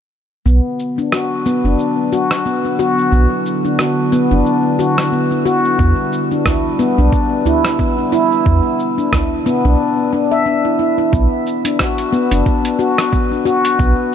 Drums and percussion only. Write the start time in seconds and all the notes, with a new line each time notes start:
0.46 shaker
0.79 shaker
0.98 shaker
1.12 cross-stick, shaker
1.46 shaker
1.65 shaker
1.79 shaker
2.12 shaker
2.31 cross-stick, shaker
2.46 shaker
2.65 shaker
2.79 shaker
2.98 shaker
3.13 shaker
3.46 shaker
3.65 shaker
3.79 cross-stick, shaker
4.12 shaker
4.31 shaker
4.46 shaker
4.79 shaker
4.98 cross-stick, shaker
5.13 shaker
5.32 shaker
5.46 shaker
5.65 shaker
5.79 kick, shaker
6.13 shaker
6.32 shaker
6.45 kick, cross-stick, udu, shaker
6.79 shaker
6.98 shaker
7.12 kick, shaker
7.45 udu, shaker
7.65 cross-stick, shaker
7.79 kick, shaker
7.98 shaker
8.12 shaker
8.31 shaker
8.46 kick, shaker
8.79 shaker
8.98 shaker
9.12 kick, cross-stick, udu, shaker
9.46 shaker
9.65 shaker
11.13 kick, shaker
11.47 shaker
11.65 closed hi-hat, shaker
11.79 kick, cross-stick, shaker
11.98 closed hi-hat
12.13 shaker
12.31 closed hi-hat, shaker
12.46 kick, shaker
12.65 closed hi-hat
12.80 shaker
12.98 cross-stick, closed hi-hat, shaker
13.13 kick, shaker
13.32 shaker
13.46 shaker
13.65 closed hi-hat, shaker
13.79 kick, shaker